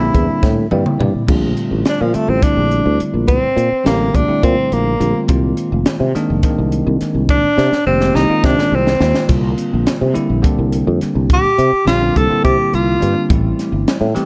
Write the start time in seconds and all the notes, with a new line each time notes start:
Already playing: E4
0.00 D3 G3 A#3 C4 D4
0.14 E2, kick, closed hi-hat
0.43 A2, kick, snare
0.71 G2 D3 G3 A#3 C4 E4 G5, high tom
0.86 mid tom
0.99 G2 D5, mid tom
1.15 muted fretless electric bass stroke
1.28 A#1 D3 G3 A3 C4 F4, kick, crash
1.57 closed hi-hat
1.71 A1
1.85 D4, snare, closed hi-hat
2.01 A#2 F3
2.13 D3 G3 A3 C4 F4, muted fretless electric bass stroke, closed hi-hat
2.28 A1 C4
2.43 D3 G3 A3 C4 D4 E4, kick, snare, closed hi-hat
2.57 A#1
2.71 closed hi-hat
2.86 D2
3.00 muted fretless electric bass stroke, closed hi-hat
3.14 A#1
3.28 C4, kick, closed hi-hat
3.43 muted fretless electric bass stroke
3.56 A#2, closed hi-hat
3.72 muted fretless electric bass stroke
3.84 A1 D3 G3 A3 A#3 C4 G4, snare, closed hi-hat
3.99 D3 G3 A3 C4 D4
4.15 A#1 D4, kick, closed hi-hat
4.28 D3 G3 A3 C4 E4, muted fretless electric bass stroke
4.43 A#2 C4, kick, closed hi-hat
4.72 A#1 A#3, closed hi-hat
5.00 A#1 D3 G3 A3 C4 F4, closed hi-hat
5.28 C2 D#3 G#3 A#3 C4 F4, kick, closed hi-hat
5.57 closed hi-hat
5.72 F1
5.86 snare, closed hi-hat
6.00 C3
6.15 D#3 G#3 A#3 C4 D4, muted fretless electric bass stroke, snare, closed hi-hat
6.30 F1
6.43 D#3 G#3 A#3 C4 D4, kick, snare, closed hi-hat
6.59 C2
6.72 closed hi-hat
6.87 C2
7.01 muted fretless electric bass stroke, snare, closed hi-hat
7.14 C2
7.29 D4, kick, closed hi-hat
7.44 muted fretless electric bass stroke
7.58 C3, snare
7.72 muted fretless electric bass stroke, snare
7.86 F1 D#3 G#3 A#3 C4 G4
8.01 D#3 G#3 A#3 C4 G4, snare
8.15 C2 D#4, snare
8.29 D#3 G#3 A#3 C4 F4, muted fretless electric bass stroke
8.44 C3 D4, kick, snare
8.59 snare
8.72 C2 C4
8.87 snare
9.00 D#2 D#3 G#3 A#3 C4 F4, snare
9.15 snare
9.28 C2 D3 G3 A#3 C4 F4, kick, closed hi-hat, crash
9.58 closed hi-hat
9.73 A#1
9.87 snare, closed hi-hat
10.01 C3
10.14 D3 G3 A#3 C4 E4, muted fretless electric bass stroke, closed hi-hat
10.30 A#1
10.42 D3 G3 A#3 C4 D4, kick, closed hi-hat
10.59 C2
10.72 closed hi-hat
10.87 F2
11.01 muted fretless electric bass stroke, snare, closed hi-hat
11.15 C2
11.30 G4, kick, closed hi-hat
11.45 muted fretless electric bass stroke
11.58 C3, closed hi-hat
11.72 muted fretless electric bass stroke
11.85 A#1 D3 G3 A#3 C4 F4 G4, snare, closed hi-hat
12.01 D3 G3 A#3 C4 D4
12.16 C2 A4, kick, closed hi-hat
12.29 D3 G3 A#3 C4 E4, muted fretless electric bass stroke
12.44 C3 G4, kick, closed hi-hat
12.73 C2 F4, closed hi-hat
13.00 G2 D3 G3 A#3 C4 D4, closed hi-hat
13.29 A1 E3 G3 A3 C4 E4, kick, closed hi-hat
13.59 snare, closed hi-hat
13.72 G1
13.88 snare, closed hi-hat
14.01 A2
14.15 E3 G3 A3 C4 G4, muted fretless electric bass stroke, snare, closed hi-hat